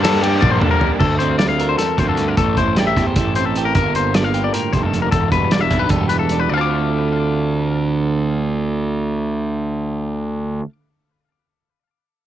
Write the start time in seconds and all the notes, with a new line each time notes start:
Already playing: G2
0.03 D3 G3 A#3 D4 A4, snare, ride
0.22 G2 D3 G3 A#3 D4 G4, ride
0.41 A#1 D3 G3 A#3 D4 D5, kick, high tom
0.51 C5
0.60 G2 D3 G3 A#3 D4 A4, mid tom
0.71 A#4
0.80 D3 G3 A#3 D4, floor tom
1.00 D2 A4, kick, crash
1.19 C4 C5, closed hi-hat
1.39 F4 D5, snare, closed hi-hat
1.49 F5
1.59 A#4, closed hi-hat
1.69 C5
1.78 E2 A4, snare, closed hi-hat
1.98 D2 F2 C5, kick, closed hi-hat
2.09 A4
2.17 G2, closed hi-hat
2.28 A#4
2.37 A1 A2 A4, kick, closed hi-hat
2.57 A1 E4 C5, kick, closed hi-hat
2.76 G4 D5, snare, closed hi-hat
2.87 E5
2.97 E2 G4, kick, snare, closed hi-hat
3.06 C5
3.16 A1 E4 A4, kick, closed hi-hat
3.35 C4 C5, closed hi-hat
3.45 A4
3.55 G4, closed hi-hat
3.65 A#4
3.75 G1 G2 D3 A#3 F4 A#4, kick, closed hi-hat
3.95 A#3 C5, closed hi-hat
4.14 F4 D5, snare, closed hi-hat
4.24 F5
4.34 G4, closed hi-hat
4.44 D5
4.53 A2 A#4, closed hi-hat
4.72 F1 G2 C5, kick, closed hi-hat
4.83 A4
4.94 F2, closed hi-hat
5.02 A#4
5.12 E1 E2 A4, kick, closed hi-hat
5.32 E1 G3 B4, kick, closed hi-hat
5.51 D4 D5, snare, closed hi-hat
5.61 E5
5.70 B1 E4, kick, closed hi-hat
5.79 G4 B4
5.89 E1 G3 A4, kick, closed hi-hat
6.09 E3 B4, closed hi-hat
6.19 A4
6.29 D4, closed hi-hat
6.40 B4
6.49 D2 D3 D5
6.53 A3 C4 F4 F5
6.57 A5 D6